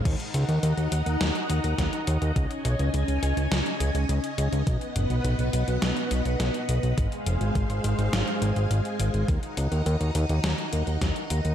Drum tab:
CC |x---------------|----------------|----------------|----------------|
HH |xxxxxxxxxxxxxxxx|xxxxxxxxxxxxxxxx|xxxxxxxxxxxxxxxx|xxxxxxxxxxxxxxxx|
SD |--------o---o---|--------o-------|--------o---o---|--------o-------|
T2 |----------------|----------------|--o-o-----------|----------------|
BD |o-----------o---|o---------------|o---------------|o---o-----------|

CC |----------------|
HH |xxxxxxxxxxxxxxxx|
SD |--------o---o---|
T2 |----------------|
BD |o-----------o---|